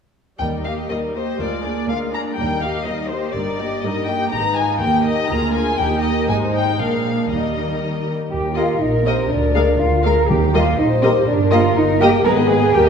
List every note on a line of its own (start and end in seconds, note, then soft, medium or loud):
0.40 0.82 D#2 soft
0.40 0.63 G3 soft
0.40 0.63 D#4 soft
0.40 0.64 A#4 soft
0.40 0.48 G5 medium
0.65 0.90 A#3 soft
0.65 0.90 G4 soft
0.65 0.90 D#5 soft
0.65 0.73 F5 medium
0.90 1.32 D#2 soft
0.90 1.15 G3 soft
0.90 1.15 D#4 soft
0.90 1.15 A#4 soft
0.90 0.98 D#5 soft
1.15 1.40 A#3 soft
1.15 1.40 G4 soft
1.15 1.39 C5 medium
1.15 1.40 D#5 soft
1.39 1.81 D2 soft
1.39 1.62 G#3 soft
1.39 1.63 F4 soft
1.39 1.63 A#4 soft
1.39 1.89 D5 soft
1.64 1.89 A#3 soft
1.64 1.89 D4 soft
1.64 1.89 G#4 soft
1.64 1.89 D5 soft
1.89 2.30 D2 soft
1.89 2.14 G#3 soft
1.89 2.14 F4 soft
1.89 2.14 A#4 soft
1.89 1.97 F5 medium
2.13 2.38 A#3 soft
2.13 2.38 D4 soft
2.13 2.38 G#4 soft
2.13 2.38 D5 soft
2.13 2.21 A#5 medium
2.37 2.79 D#2 soft
2.37 2.79 D#2 medium
2.37 2.61 G3 soft
2.37 2.61 D#4 soft
2.37 2.61 A#4 soft
2.37 2.62 G5 medium
2.62 2.87 A#3 soft
2.62 2.87 G4 soft
2.62 2.87 D#5 soft
2.62 2.87 F5 medium
2.86 3.27 D#2 soft
2.86 3.11 G3 soft
2.86 3.12 D#4 soft
2.86 3.11 A#4 soft
2.86 3.11 D#5 medium
3.10 3.35 A#3 soft
3.10 3.35 G4 soft
3.10 3.35 C5 medium
3.10 3.35 D#5 soft
3.35 3.76 G1 soft
3.35 3.76 G2 medium
3.35 3.58 G3 soft
3.35 3.58 D#4 soft
3.35 3.58 A#4 soft
3.35 3.84 D5 medium
3.59 3.84 A#3 soft
3.59 3.84 G4 soft
3.59 3.84 D#5 soft
3.83 4.24 G2 medium
3.83 4.08 G3 soft
3.83 4.08 D#4 soft
3.83 4.08 A#4 soft
3.83 4.08 D#5 medium
4.07 4.32 A#3 soft
4.07 4.32 G4 soft
4.07 4.32 D#5 soft
4.07 4.32 G5 medium
4.32 4.78 G#1 soft
4.32 4.78 G#2 medium
4.32 4.78 G#3 soft
4.32 4.40 D#4 soft
4.32 4.78 D#4 soft
4.32 4.78 B4 soft
4.32 4.56 A#5 medium
4.56 4.81 F4 soft
4.56 4.81 G#5 medium
4.80 5.27 D#2 soft
4.80 5.30 D#2 medium
4.80 5.29 A#3 soft
4.80 5.29 D#4 soft
4.80 5.30 G4 soft
4.80 5.28 A#4 soft
4.80 5.05 G5 medium
5.06 5.30 D#5 medium
5.29 5.78 D2 medium
5.29 5.76 D2 soft
5.29 5.78 A#3 soft
5.29 5.80 F4 soft
5.29 5.78 G#4 medium
5.29 5.78 A#4 medium
5.29 5.54 A#5 medium
5.55 5.79 G#5 medium
5.79 6.28 D#2 medium
5.79 6.25 D#2 medium
5.79 6.28 A#3 medium
5.79 6.27 D#4 medium
5.79 6.29 G4 medium
5.79 6.28 A#4 soft
5.79 6.04 G5 medium
6.04 6.28 D#5 medium
6.28 6.75 G#1 medium
6.28 6.79 G#2 medium
6.28 6.78 G#3 soft
6.28 6.78 D#4 soft
6.28 6.79 D#4 medium
6.28 6.79 C5 medium
6.28 6.37 G#5 medium
6.54 6.78 G5 medium
6.79 7.26 A#1 soft
6.79 7.30 A#2 medium
6.79 7.29 G#3 soft
6.79 7.28 A#3 soft
6.79 7.29 D4 soft
6.79 7.28 A#4 soft
6.79 7.30 F5 medium
7.29 7.77 D#2 soft
7.29 8.10 D#3 soft
7.29 8.10 G3 soft
7.29 8.10 A#3 soft
7.29 8.11 D#4 soft
7.29 8.10 A#4 soft
7.29 8.05 D#5 medium
8.32 8.73 D#2 medium
8.32 8.55 G4 medium
8.32 10.25 A#4 medium
8.32 8.58 G5 medium
8.56 8.65 A#3 soft
8.56 8.68 A#3 medium
8.56 8.81 F4 medium
8.56 8.65 G4 soft
8.56 8.68 A#4 medium
8.56 8.68 D#5 soft
8.56 8.83 F5 medium
8.81 9.22 A#1 medium
8.81 9.06 D#4 medium
8.81 9.08 D#5 medium
9.05 9.14 A#3 soft
9.05 9.17 A#3 soft
9.05 9.30 C4 medium
9.05 9.14 G4 soft
9.05 9.17 A#4 medium
9.05 9.33 C5 medium
9.05 9.17 D#5 medium
9.30 9.72 D2 medium
9.30 9.80 D4 medium
9.30 9.81 D5 medium
9.55 9.67 G#3 medium
9.55 9.64 A#3 medium
9.55 9.64 G#4 medium
9.55 9.67 A#4 medium
9.55 9.67 F5 soft
9.80 10.21 D2 medium
9.80 10.05 F4 medium
9.80 10.04 F5 medium
10.04 10.17 G#3 medium
10.04 10.13 A#3 medium
10.04 10.13 G#4 medium
10.04 10.29 A#4 medium
10.04 10.17 A#4 medium
10.04 10.16 F5 medium
10.04 10.29 A#5 medium
10.29 10.70 D#2 medium
10.29 10.99 D#3 medium
10.29 10.54 G4 medium
10.29 10.78 G4 medium
10.29 10.36 G5 medium
10.53 10.66 G3 medium
10.53 10.62 A#3 medium
10.53 10.78 F4 medium
10.53 10.62 G4 medium
10.53 10.65 A#4 medium
10.53 10.66 D#5 medium
10.53 10.80 F5 medium
10.78 11.19 A#1 medium
10.78 10.86 D#4 medium
10.78 11.27 C5 medium
10.78 11.04 D#5 medium
11.02 11.14 G3 medium
11.02 11.11 A#3 medium
11.02 11.11 C4 medium
11.02 11.11 G4 medium
11.02 11.14 A#4 medium
11.02 11.26 C5 medium
11.02 11.14 D#5 medium
11.27 11.68 G1 medium
11.27 11.51 D4 medium
11.27 12.25 A#4 medium
11.27 11.33 D5 medium
11.51 11.60 A#3 medium
11.51 11.63 A#3 medium
11.51 11.76 F4 medium
11.51 11.60 G4 medium
11.51 11.63 A#4 medium
11.51 11.63 D#5 medium
11.51 11.58 F5 medium
11.76 12.17 G1 medium
11.76 12.00 D#4 medium
11.76 12.02 D#5 medium
11.99 12.08 A#3 medium
11.99 12.12 A#3 medium
11.99 12.08 G4 medium
11.99 12.08 G4 loud
11.99 12.12 A#4 medium
11.99 12.12 D#5 medium
11.99 12.24 G5 medium
12.24 12.70 G#1 medium
12.24 12.36 G#3 medium
12.24 12.70 B3 medium
12.24 12.70 G#4 medium
12.24 12.73 G#4 medium
12.24 12.36 G#4 medium
12.24 12.33 A#4 loud
12.24 12.37 B4 medium
12.24 12.31 A#5 medium
12.37 12.49 B3 medium
12.37 12.49 B4 medium
12.37 12.49 D#5 medium
12.49 12.62 G#3 medium
12.49 12.73 G#4 medium
12.49 12.62 G#4 medium
12.49 12.61 B4 medium
12.49 12.73 G#5 medium
12.61 12.73 B3 medium
12.61 12.73 B4 medium
12.61 12.73 D#5 medium
12.73 12.89 D#2 medium
12.73 12.85 G3 medium
12.73 12.89 A#3 medium
12.73 12.89 G4 medium
12.73 12.89 A#4 medium
12.73 12.85 A#4 medium
12.73 12.84 G5 medium
12.73 12.80 G5 medium
12.85 12.89 A#3 medium
12.85 12.89 G4 medium
12.85 12.89 D#5 medium